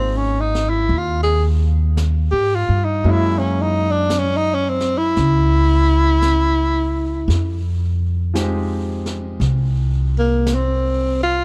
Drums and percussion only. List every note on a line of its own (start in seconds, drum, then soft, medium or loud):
0.55 snare soft
0.90 brush sweep soft
1.97 brush sweep soft
1.97 snare soft
1.97 hi-hat pedal soft
3.04 brush sweep soft
4.10 brush sweep soft
4.10 snare soft
4.10 hi-hat pedal medium
4.80 snare soft
5.16 brush sweep soft
5.16 snare soft
6.22 brush sweep soft
6.22 snare soft
6.22 hi-hat pedal soft
7.30 brush sweep soft
7.30 snare soft
8.35 brush sweep soft
8.35 snare soft
8.35 hi-hat pedal medium
9.06 snare soft
9.41 brush sweep soft
9.41 snare soft
10.47 brush sweep soft
10.47 snare soft
10.47 hi-hat pedal medium